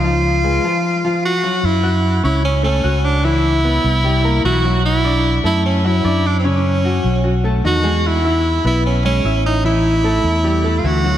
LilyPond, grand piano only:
\new Staff \with { instrumentName = "Grand piano" } { \time 4/4 \key des \major \tempo 4 = 150 <f f' f''>4 <aes aes' ces''>8 <f f' f''>4 <f f' f''>4 <ges ges' ges''>8 | \key fis \minor r8 <fis' fis'' fis'''>4 <cis' cis'' cis'''>4 <a a' a''>8 <fis' fis'' fis'''>4 | <e e' e''>4 <b b' b''>4 <g g' g''>8 <bes bes' bes''>8 <e e' e''>8 <fis fis' fis''>8~ | <fis fis' fis''>8 <d' d'' d'''>4 <a a' a''>4 <fis fis' fis''>8 <d' d'' d'''>4 |
<cis cis' cis''>4 <fis fis' fis''>4 <fis fis' fis''>8 <a a' a''>8 <dis dis' dis''>8 <gis gis' gis''>8~ | <gis gis' gis''>8 <e' e'' e'''>4 <b b' b''>4 <gis gis' gis''>8 <e' e'' e'''>4 | <e e' e''>4 <a a' a''>4 <g g' g''>8 <a a' a''>8 <e e' e''>8 <fis fis' fis''>8 | }